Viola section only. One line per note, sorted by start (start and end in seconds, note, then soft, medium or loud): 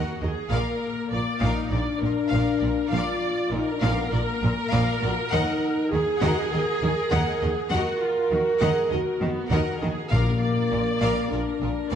0.00 0.22 F#4 medium
0.23 0.53 G#4 medium
0.53 1.12 A#4 loud
1.13 1.42 D5 medium
1.42 1.72 D#4 medium
1.74 2.03 D5 medium
2.01 2.32 A#4 medium
2.33 2.91 A#4 medium
2.93 3.52 D5 loud
3.52 5.92 A#4 loud
5.91 7.68 G#4 loud
7.72 8.01 F#4 loud
8.02 8.32 F4 medium
8.33 8.62 F#4 loud
8.62 8.92 G#4 medium
8.94 9.23 A#4 medium
9.22 9.52 B3 loud
9.52 9.82 A#4 medium
9.81 10.12 G#4 medium
10.11 10.41 A#4 loud
10.40 11.29 D5 medium
11.32 11.91 A#4 medium
11.91 11.95 D5 medium